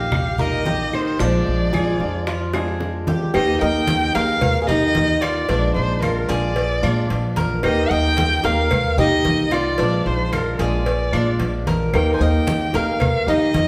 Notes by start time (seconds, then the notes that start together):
Already playing: A#1 A#3 D#4 G4 F5
0.12 muted steel-string acoustic guitar stroke, high bongo, high conga, low conga, claves
0.38 G3 A#3 D#4 G4 A#4 D#5, high bongo, high conga, low conga
0.66 D#3 A#3 D#4 G4, high bongo, low bongo, high conga
0.92 D#3 C5, high bongo, high conga, claves
1.19 A#1 F3 G#3 D4 F4 D5, high bongo, high conga
1.47 A#1, high conga
1.73 F3 G#3 D4 F4 G#4, high bongo, high conga, claves
2.00 F2 G#3 D4 F4, high bongo, high conga
2.27 F4, muted steel-string acoustic guitar stroke, high bongo, high conga
2.53 G#3 D4 F4 G#4, high bongo, high conga, claves
2.80 F3 G#3 D4 F4, low bongo, high conga
3.07 G4, low bongo, high conga
3.34 D#2 D#3 A#3 D#4 G4 D#5, cowbell, high conga, claves
3.61 D#2 A#4 D#5 G5, high conga
3.87 cowbell, high conga
4.14 D#2 A#3 D#4 G4 G#4 A#4 F5, cowbell
4.41 muted steel-string acoustic guitar stroke, cowbell, high conga, low conga, claves
4.62 G#4 F5
4.67 D#3 A#3 D#4 G4 D#5, high conga, low conga
4.95 D#2 D#3 A#3 D#4 G4, cowbell, high conga
5.21 F4 D5, cowbell, high conga, claves
5.49 A#1 F3 G#3 D4 F4, cowbell, high conga
5.74 A#1 D#4 C5, high conga
6.01 D4 F4 A#4, cowbell, high conga, claves
6.29 A#1 G#3 D4 F4 G#4 D5, cowbell, high conga
6.56 muted steel-string acoustic guitar stroke, cowbell, high conga
6.83 A#2 G#3 D4 F4, high conga, claves
7.09 A#1 F3 G#3 D4 F4, cowbell, high conga
7.36 A#4, cowbell, high conga
7.63 D#2 D#3 A#3 D#4 G4 D#5, cowbell, high conga, claves
7.90 D#2 A#4 D#5 G5, high conga
8.17 cowbell, high conga
8.43 D#2 A#3 D#4 G4 A#4 F5, cowbell
8.71 muted steel-string acoustic guitar stroke, cowbell, high conga, low conga, claves
8.97 D#3 A#3 D#4 G4 D#5, high conga, low conga
9.24 C2 D#3 A#3 D#4 G4, cowbell, high conga
9.51 F4 D5, cowbell, high conga, claves
9.78 A#1 F3 G#3 D4 F4, cowbell, high conga
10.06 A#1 D#4 C5, high conga
10.33 D4 F4 A#4, cowbell, high conga, claves
10.59 A#1 G#3 D4 F4 G#4 D5, cowbell, high conga
10.86 muted steel-string acoustic guitar stroke, cowbell, high conga
11.13 A#2 G#3 D4 F4, high conga, claves
11.40 A#1 F3 G#3 D4 F4, cowbell, high conga
11.67 A#4, cowbell, high conga
11.93 D#2 D#3 A#3 D#4 G4 A#4 G5, cowbell, high conga, claves
12.14 C5 G#5
12.20 D#2 A#4 D#5 G5, high conga
12.47 cowbell, high conga
12.73 D#2 A#3 D#4 G4 A#4 F5, cowbell
13.00 muted steel-string acoustic guitar stroke, cowbell, high conga, low conga, claves
13.27 D#3 A#3 D#4 G4 D#5, high conga
13.54 F2 D#3 A#3 D#4 G4, cowbell, high conga